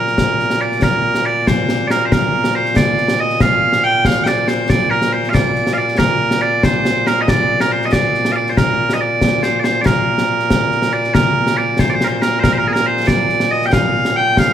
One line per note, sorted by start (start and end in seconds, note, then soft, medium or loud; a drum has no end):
0.00 14.53 A#2 medium
0.00 0.61 A#4 medium
0.07 snare soft
0.18 concert bass drum medium
0.18 snare loud
0.40 snare soft
0.50 snare medium
0.61 0.83 D5 medium
0.72 snare soft
0.82 1.26 A#4 medium
0.82 concert bass drum medium
0.82 snare medium
1.15 snare medium
1.26 1.48 D5 medium
1.47 1.88 C5 medium
1.47 concert bass drum medium
1.47 snare loud
1.69 snare medium
1.88 2.05 A#4 medium
1.88 1.91 D5 medium
1.88 snare medium
2.05 2.12 C5 medium
2.12 2.55 A#4 medium
2.12 concert bass drum medium
2.12 snare loud
2.44 snare medium
2.55 2.77 C5 medium
2.66 snare soft
2.76 3.20 D5 loud
2.76 concert bass drum medium
2.76 snare loud
2.98 snare soft
3.08 snare medium
3.20 3.41 D#5 loud
3.30 snare soft
3.40 3.84 F5 loud
3.40 concert bass drum medium
3.40 snare loud
3.73 snare medium
3.84 4.05 G5 loud
4.05 4.23 F5 loud
4.05 concert bass drum medium
4.05 snare loud
4.24 4.48 D5 medium
4.24 4.27 G5 medium
4.24 snare medium
4.48 4.70 C5 medium
4.48 snare medium
4.70 4.90 D5 loud
4.70 concert bass drum medium
4.70 snare loud
4.90 5.12 A#4 medium
5.02 snare medium
5.12 5.30 C5 medium
5.24 snare soft
5.30 5.34 F5 loud
5.34 5.73 D5 loud
5.34 concert bass drum medium
5.34 snare loud
5.56 snare soft
5.67 snare medium
5.73 5.78 F5 medium
5.78 5.98 D5 medium
5.88 snare soft
5.98 6.42 A#4 loud
5.98 concert bass drum medium
5.98 snare loud
6.31 snare medium
6.42 6.64 D5 medium
6.63 7.07 C5 medium
6.63 concert bass drum medium
6.63 snare loud
6.85 snare medium
7.07 7.21 A#4 medium
7.07 snare medium
7.21 7.28 D#5 medium
7.28 7.61 D5 loud
7.28 concert bass drum medium
7.28 snare loud
7.60 7.72 A#4 medium
7.60 snare medium
7.72 7.86 C5 medium
7.82 7.92 D#5 medium
7.82 snare soft
7.92 8.32 D5 medium
7.92 concert bass drum medium
7.92 snare loud
8.14 snare soft
8.25 snare medium
8.32 8.50 D5 medium
8.32 8.36 F5 medium
8.47 8.57 C5 medium
8.47 snare soft
8.57 8.94 A#4 medium
8.57 concert bass drum medium
8.57 snare medium
8.89 snare medium
8.94 9.00 D#5 medium
9.00 9.43 D5 medium
9.21 concert bass drum medium
9.21 snare loud
9.43 9.60 C5 medium
9.43 snare medium
9.60 9.64 D5 medium
9.64 9.82 C5 medium
9.64 snare medium
9.82 9.86 D5 medium
9.86 10.93 A#4 medium
9.86 concert bass drum medium
9.86 snare loud
10.18 snare medium
10.40 snare soft
10.50 concert bass drum medium
10.50 snare loud
10.72 snare soft
10.82 snare medium
10.93 11.14 D5 medium
11.04 snare soft
11.14 11.57 A#4 loud
11.14 concert bass drum medium
11.14 snare loud
11.47 snare medium
11.57 11.80 D5 medium
11.79 11.90 C5 loud
11.79 concert bass drum medium
11.79 snare loud
11.90 11.94 D5 medium
11.94 12.04 C5 medium
12.01 12.08 A#4 medium
12.01 snare medium
12.07 12.17 C5 medium
12.17 12.22 C5 medium
12.22 12.39 A#4 medium
12.22 snare medium
12.39 12.53 A#4 loud
12.39 12.43 C5 loud
12.44 concert bass drum medium
12.44 snare loud
12.53 12.58 C5 medium
12.58 12.67 A#4 loud
12.68 12.72 G#4 medium
12.72 12.86 A#4 medium
12.72 snare medium
12.86 13.07 C5 medium
12.97 snare soft
13.07 13.51 D5 loud
13.07 concert bass drum medium
13.07 snare loud
13.29 snare soft
13.40 snare medium
13.51 13.66 D#5 loud
13.62 13.72 G5 medium
13.62 snare soft
13.72 14.16 F5 loud
13.72 concert bass drum medium
13.72 snare loud
14.05 snare medium
14.16 14.38 G5 loud
14.37 14.53 F5 loud
14.37 concert bass drum medium
14.37 snare loud